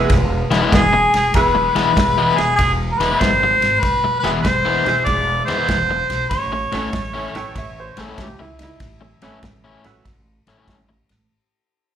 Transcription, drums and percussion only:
0.10 kick, snare, ride
0.51 snare, ride
0.72 kick, snare, ride
1.14 snare, ride
1.34 kick, snare, ride
1.76 snare, ride
1.97 kick, snare, ride
2.38 snare, ride
2.59 kick, snare, ride
3.01 snare, ride
3.21 kick, snare, ride
3.62 snare, ride
3.83 kick, snare, ride
4.24 snare, ride
4.45 kick, snare, ride
4.86 snare, ride
5.06 kick, snare, ride
5.48 snare, ride
5.68 kick, snare, ride
6.10 snare, ride
6.31 kick, snare, ride
6.72 snare, ride
6.93 kick, snare, ride
7.35 snare, ride
7.55 kick, snare, ride
7.97 snare, ride
8.18 kick, snare, ride
8.59 snare, ride
8.80 kick, snare, ride
9.22 snare, ride
9.43 kick, snare, ride
9.84 snare, ride
10.05 kick, snare, ride
10.47 snare, ride
10.68 kick, snare, ride
11.09 snare, ride

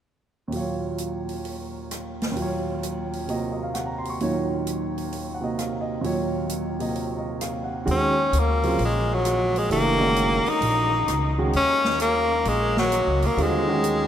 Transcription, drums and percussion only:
0.52 open hi-hat
0.98 closed hi-hat
1.29 open hi-hat
1.45 open hi-hat
1.91 cross-stick, closed hi-hat
2.22 snare, open hi-hat
2.37 open hi-hat
2.83 closed hi-hat
3.13 open hi-hat
3.29 open hi-hat
3.75 cross-stick, closed hi-hat
4.05 open hi-hat
4.20 open hi-hat
4.67 closed hi-hat
4.98 open hi-hat
5.12 open hi-hat
5.59 cross-stick, closed hi-hat
6.04 open hi-hat
6.49 closed hi-hat
6.80 open hi-hat
6.95 open hi-hat
7.41 cross-stick, closed hi-hat
7.87 open hi-hat
8.33 closed hi-hat
8.63 open hi-hat
8.79 open hi-hat
9.25 cross-stick, closed hi-hat
9.56 open hi-hat
9.71 open hi-hat
10.16 closed hi-hat
10.46 open hi-hat
10.62 open hi-hat
11.08 cross-stick, closed hi-hat
11.53 open hi-hat
11.85 snare
12.00 closed hi-hat
12.45 open hi-hat
12.77 snare
12.92 cross-stick, closed hi-hat
13.22 open hi-hat
13.38 open hi-hat
13.84 closed hi-hat

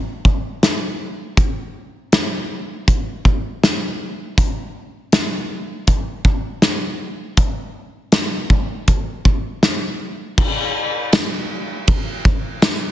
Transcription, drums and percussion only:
0.25 kick
0.63 snare, closed hi-hat
1.37 kick, closed hi-hat
2.12 snare, closed hi-hat
2.88 kick, closed hi-hat
3.25 kick
3.64 snare, closed hi-hat
4.38 kick, closed hi-hat
5.12 snare, closed hi-hat
5.87 kick, closed hi-hat
6.25 kick
6.62 snare, closed hi-hat
7.37 kick, closed hi-hat
8.12 snare, closed hi-hat
8.50 kick
8.88 kick, closed hi-hat
9.25 kick
9.63 snare, closed hi-hat
10.38 kick, crash
11.13 snare, ride, tambourine
11.88 kick, ride
12.25 kick
12.62 snare, ride, tambourine

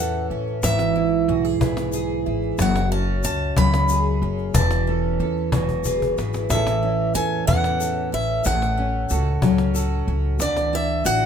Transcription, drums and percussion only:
0.46 cajon slap
0.63 cajon bass, cajon slap, shaker
0.79 cajon slap
1.61 cajon bass
1.77 cajon slap
1.93 shaker
2.42 cajon slap
2.58 cajon bass, cajon slap, shaker
2.76 cajon slap
3.24 shaker
3.57 cajon bass
3.74 cajon slap
3.89 shaker
4.38 cajon slap
4.54 cajon bass, shaker
4.71 cajon slap
4.87 cajon slap
5.04 cajon slap
5.20 cajon slap
5.37 cajon slap
5.52 cajon bass
5.69 cajon bass
5.84 cajon bass, shaker
6.02 cajon bass
6.18 cajon slap, shaker
6.33 cajon slap, shaker
6.50 cajon bass, cajon slap, shaker
6.67 cajon slap
7.15 shaker
7.48 cajon bass
7.64 cajon slap
7.81 shaker
8.29 cajon slap
8.44 cajon bass, cajon slap, shaker
8.62 cajon slap
9.10 shaker
9.42 cajon bass
9.58 cajon slap
9.75 shaker
10.23 cajon slap
10.40 cajon bass, cajon slap, shaker
10.56 cajon slap
11.05 shaker

